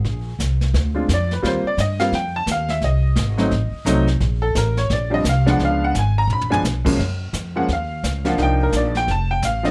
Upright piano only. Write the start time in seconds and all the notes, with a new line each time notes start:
Already playing: G#4
0.95 G#3 C4 D4 F4
1.14 D5
1.33 B4
1.42 G3 A#3 C4 F4
1.47 C5
1.67 D5
1.80 D#5
2.00 G3 A#3 C4 F4 F5
2.15 G5
2.36 A5
2.51 F5
2.70 E5
2.84 D#5
3.38 F#3 A3 C4 D#4
3.86 F#3 A3 C4 D#4
4.42 A4
4.57 A#4
4.78 C#5
4.93 D5
5.10 F3 G3 C4 D4 D#5
5.29 F5
5.46 F3 G#3 B3 D4 F#5
5.65 F5
5.84 F#5
5.99 G#5
6.18 A#5
6.33 B5
6.50 F3 G#3 B3 D4 G#5
6.84 F#2 F3 G#3 A#3 C#4
7.56 F3 G#3 A#3 C#4 F#5
7.73 F5
8.25 F3 A#3 D4 F4 F#5
8.38 F3 A#3 D4 D#4
8.43 G5
8.63 A#4
8.77 D5
8.97 G5
9.11 A5
9.31 G5
9.45 F5
9.63 F3 A3 C4 D4 D#5